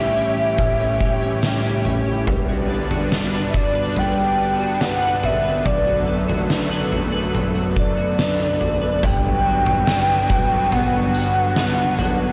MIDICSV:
0, 0, Header, 1, 5, 480
1, 0, Start_track
1, 0, Tempo, 845070
1, 1291, Time_signature, 4, 2, 24, 8
1, 6999, End_track
2, 0, Start_track
2, 0, Title_t, "Soft synth lead"
2, 0, Program_c, 0, 80
2, 0, Note_on_c, 0, 76, 94
2, 1031, Note_off_c, 0, 76, 0
2, 1986, Note_on_c, 0, 76, 58
2, 2025, Note_on_c, 0, 74, 90
2, 2034, Note_off_c, 0, 76, 0
2, 2263, Note_on_c, 0, 79, 99
2, 2272, Note_off_c, 0, 74, 0
2, 2712, Note_off_c, 0, 79, 0
2, 2712, Note_on_c, 0, 79, 70
2, 2737, Note_on_c, 0, 78, 104
2, 2746, Note_off_c, 0, 79, 0
2, 2982, Note_on_c, 0, 76, 89
2, 2991, Note_off_c, 0, 78, 0
2, 3213, Note_off_c, 0, 76, 0
2, 3217, Note_on_c, 0, 74, 79
2, 3671, Note_off_c, 0, 74, 0
2, 4423, Note_on_c, 0, 74, 84
2, 5139, Note_on_c, 0, 79, 108
2, 5148, Note_off_c, 0, 74, 0
2, 6097, Note_on_c, 0, 78, 102
2, 6105, Note_off_c, 0, 79, 0
2, 6999, Note_off_c, 0, 78, 0
2, 6999, End_track
3, 0, Start_track
3, 0, Title_t, "Clean electric guitar"
3, 0, Program_c, 1, 27
3, 0, Note_on_c, 1, 45, 68
3, 0, Note_on_c, 1, 55, 56
3, 0, Note_on_c, 1, 61, 50
3, 0, Note_on_c, 1, 67, 62
3, 85, Note_off_c, 1, 61, 0
3, 92, Note_on_c, 1, 61, 55
3, 210, Note_off_c, 1, 67, 0
3, 213, Note_on_c, 1, 67, 63
3, 325, Note_off_c, 1, 45, 0
3, 332, Note_on_c, 1, 45, 67
3, 445, Note_off_c, 1, 61, 0
3, 452, Note_on_c, 1, 61, 47
3, 569, Note_off_c, 1, 55, 0
3, 571, Note_on_c, 1, 55, 55
3, 687, Note_off_c, 1, 61, 0
3, 693, Note_on_c, 1, 61, 55
3, 806, Note_off_c, 1, 55, 0
3, 808, Note_on_c, 1, 55, 53
3, 929, Note_off_c, 1, 67, 0
3, 932, Note_on_c, 1, 67, 57
3, 1046, Note_off_c, 1, 61, 0
3, 1053, Note_on_c, 1, 61, 52
3, 1169, Note_off_c, 1, 67, 0
3, 1171, Note_on_c, 1, 67, 55
3, 1291, Note_off_c, 1, 55, 0
3, 1291, Note_on_c, 1, 55, 69
3, 1339, Note_off_c, 1, 45, 0
3, 1340, Note_off_c, 1, 61, 0
3, 1411, Note_off_c, 1, 67, 0
3, 1413, Note_on_c, 1, 66, 52
3, 1533, Note_on_c, 1, 62, 53
3, 1651, Note_off_c, 1, 66, 0
3, 1653, Note_on_c, 1, 66, 53
3, 1773, Note_off_c, 1, 62, 0
3, 1775, Note_on_c, 1, 62, 53
3, 1894, Note_on_c, 1, 71, 58
3, 2013, Note_off_c, 1, 66, 0
3, 2015, Note_on_c, 1, 66, 53
3, 2129, Note_off_c, 1, 71, 0
3, 2131, Note_on_c, 1, 71, 63
3, 2246, Note_off_c, 1, 55, 0
3, 2253, Note_on_c, 1, 55, 73
3, 2488, Note_off_c, 1, 62, 0
3, 2490, Note_on_c, 1, 62, 50
3, 2608, Note_off_c, 1, 66, 0
3, 2610, Note_on_c, 1, 66, 57
3, 2728, Note_off_c, 1, 62, 0
3, 2730, Note_on_c, 1, 62, 60
3, 2848, Note_off_c, 1, 71, 0
3, 2850, Note_on_c, 1, 71, 56
3, 2970, Note_off_c, 1, 66, 0
3, 2972, Note_on_c, 1, 66, 54
3, 3088, Note_off_c, 1, 71, 0
3, 3090, Note_on_c, 1, 71, 55
3, 3208, Note_off_c, 1, 55, 0
3, 3210, Note_on_c, 1, 54, 69
3, 3330, Note_off_c, 1, 66, 0
3, 3333, Note_on_c, 1, 66, 54
3, 3448, Note_off_c, 1, 62, 0
3, 3450, Note_on_c, 1, 62, 52
3, 3567, Note_off_c, 1, 66, 0
3, 3569, Note_on_c, 1, 66, 54
3, 3688, Note_off_c, 1, 62, 0
3, 3690, Note_on_c, 1, 62, 54
3, 3806, Note_off_c, 1, 71, 0
3, 3808, Note_on_c, 1, 71, 62
3, 3927, Note_off_c, 1, 66, 0
3, 3929, Note_on_c, 1, 66, 55
3, 4045, Note_off_c, 1, 71, 0
3, 4047, Note_on_c, 1, 71, 61
3, 4167, Note_off_c, 1, 54, 0
3, 4169, Note_on_c, 1, 54, 67
3, 4287, Note_off_c, 1, 66, 0
3, 4289, Note_on_c, 1, 66, 46
3, 4405, Note_off_c, 1, 62, 0
3, 4408, Note_on_c, 1, 62, 50
3, 4526, Note_off_c, 1, 66, 0
3, 4529, Note_on_c, 1, 66, 55
3, 4651, Note_off_c, 1, 62, 0
3, 4653, Note_on_c, 1, 62, 57
3, 4768, Note_off_c, 1, 71, 0
3, 4771, Note_on_c, 1, 71, 59
3, 4887, Note_off_c, 1, 66, 0
3, 4889, Note_on_c, 1, 66, 54
3, 5006, Note_off_c, 1, 71, 0
3, 5008, Note_on_c, 1, 71, 55
3, 5130, Note_on_c, 1, 43, 81
3, 5371, Note_off_c, 1, 54, 0
3, 5371, Note_on_c, 1, 54, 59
3, 5611, Note_off_c, 1, 66, 0
3, 5613, Note_off_c, 1, 62, 0
3, 5613, Note_on_c, 1, 62, 67
3, 5843, Note_off_c, 1, 54, 0
3, 5850, Note_on_c, 1, 54, 62
3, 6089, Note_on_c, 1, 59, 63
3, 6322, Note_off_c, 1, 54, 0
3, 6329, Note_on_c, 1, 54, 58
3, 6565, Note_off_c, 1, 59, 0
3, 6571, Note_on_c, 1, 59, 63
3, 6803, Note_off_c, 1, 54, 0
3, 6810, Note_on_c, 1, 54, 60
3, 6996, Note_off_c, 1, 71, 0
3, 6999, Note_off_c, 1, 43, 0
3, 6999, Note_off_c, 1, 54, 0
3, 6999, Note_off_c, 1, 59, 0
3, 6999, Note_off_c, 1, 62, 0
3, 6999, End_track
4, 0, Start_track
4, 0, Title_t, "Analog synth pad"
4, 0, Program_c, 2, 89
4, 0, Note_on_c, 2, 45, 75
4, 0, Note_on_c, 2, 52, 71
4, 0, Note_on_c, 2, 61, 74
4, 0, Note_on_c, 2, 67, 86
4, 1271, Note_off_c, 2, 67, 0
4, 1272, Note_off_c, 2, 52, 0
4, 1272, Note_off_c, 2, 61, 0
4, 1273, Note_off_c, 2, 45, 0
4, 1290, Note_on_c, 2, 62, 86
4, 1292, Note_on_c, 2, 43, 80
4, 1292, Note_on_c, 2, 50, 76
4, 1292, Note_on_c, 2, 59, 75
4, 3191, Note_off_c, 2, 62, 0
4, 3192, Note_off_c, 2, 43, 0
4, 3211, Note_on_c, 2, 57, 75
4, 3214, Note_on_c, 2, 42, 82
4, 5109, Note_off_c, 2, 50, 0
4, 5109, Note_off_c, 2, 59, 0
4, 5112, Note_off_c, 2, 57, 0
4, 5113, Note_off_c, 2, 42, 0
4, 5127, Note_on_c, 2, 43, 80
4, 5127, Note_on_c, 2, 59, 87
4, 5128, Note_on_c, 2, 50, 82
4, 5129, Note_on_c, 2, 54, 82
4, 6999, Note_off_c, 2, 43, 0
4, 6999, Note_off_c, 2, 50, 0
4, 6999, Note_off_c, 2, 54, 0
4, 6999, Note_off_c, 2, 59, 0
4, 6999, End_track
5, 0, Start_track
5, 0, Title_t, "Drums"
5, 330, Note_on_c, 9, 43, 59
5, 332, Note_on_c, 9, 36, 85
5, 387, Note_off_c, 9, 43, 0
5, 389, Note_off_c, 9, 36, 0
5, 571, Note_on_c, 9, 36, 77
5, 628, Note_off_c, 9, 36, 0
5, 812, Note_on_c, 9, 38, 104
5, 869, Note_off_c, 9, 38, 0
5, 1052, Note_on_c, 9, 43, 53
5, 1108, Note_off_c, 9, 43, 0
5, 1291, Note_on_c, 9, 43, 97
5, 1292, Note_on_c, 9, 36, 92
5, 1348, Note_off_c, 9, 36, 0
5, 1348, Note_off_c, 9, 43, 0
5, 1652, Note_on_c, 9, 43, 56
5, 1709, Note_off_c, 9, 43, 0
5, 1772, Note_on_c, 9, 38, 99
5, 1829, Note_off_c, 9, 38, 0
5, 2012, Note_on_c, 9, 36, 78
5, 2069, Note_off_c, 9, 36, 0
5, 2252, Note_on_c, 9, 43, 58
5, 2308, Note_off_c, 9, 43, 0
5, 2733, Note_on_c, 9, 38, 99
5, 2789, Note_off_c, 9, 38, 0
5, 2974, Note_on_c, 9, 43, 52
5, 3030, Note_off_c, 9, 43, 0
5, 3213, Note_on_c, 9, 36, 93
5, 3214, Note_on_c, 9, 43, 94
5, 3270, Note_off_c, 9, 36, 0
5, 3270, Note_off_c, 9, 43, 0
5, 3575, Note_on_c, 9, 43, 56
5, 3632, Note_off_c, 9, 43, 0
5, 3693, Note_on_c, 9, 38, 94
5, 3750, Note_off_c, 9, 38, 0
5, 3933, Note_on_c, 9, 43, 54
5, 3990, Note_off_c, 9, 43, 0
5, 4172, Note_on_c, 9, 43, 56
5, 4229, Note_off_c, 9, 43, 0
5, 4411, Note_on_c, 9, 36, 72
5, 4467, Note_off_c, 9, 36, 0
5, 4652, Note_on_c, 9, 38, 102
5, 4709, Note_off_c, 9, 38, 0
5, 4890, Note_on_c, 9, 43, 56
5, 4947, Note_off_c, 9, 43, 0
5, 5130, Note_on_c, 9, 43, 111
5, 5130, Note_on_c, 9, 54, 64
5, 5131, Note_on_c, 9, 36, 108
5, 5187, Note_off_c, 9, 36, 0
5, 5187, Note_off_c, 9, 43, 0
5, 5187, Note_off_c, 9, 54, 0
5, 5489, Note_on_c, 9, 43, 59
5, 5546, Note_off_c, 9, 43, 0
5, 5608, Note_on_c, 9, 38, 117
5, 5609, Note_on_c, 9, 54, 83
5, 5665, Note_off_c, 9, 38, 0
5, 5666, Note_off_c, 9, 54, 0
5, 5848, Note_on_c, 9, 43, 64
5, 5848, Note_on_c, 9, 54, 61
5, 5850, Note_on_c, 9, 36, 91
5, 5904, Note_off_c, 9, 43, 0
5, 5904, Note_off_c, 9, 54, 0
5, 5907, Note_off_c, 9, 36, 0
5, 6090, Note_on_c, 9, 43, 64
5, 6090, Note_on_c, 9, 54, 61
5, 6147, Note_off_c, 9, 43, 0
5, 6147, Note_off_c, 9, 54, 0
5, 6329, Note_on_c, 9, 54, 68
5, 6385, Note_off_c, 9, 54, 0
5, 6568, Note_on_c, 9, 38, 116
5, 6568, Note_on_c, 9, 54, 94
5, 6625, Note_off_c, 9, 38, 0
5, 6625, Note_off_c, 9, 54, 0
5, 6808, Note_on_c, 9, 43, 59
5, 6808, Note_on_c, 9, 54, 65
5, 6865, Note_off_c, 9, 43, 0
5, 6865, Note_off_c, 9, 54, 0
5, 6999, End_track
0, 0, End_of_file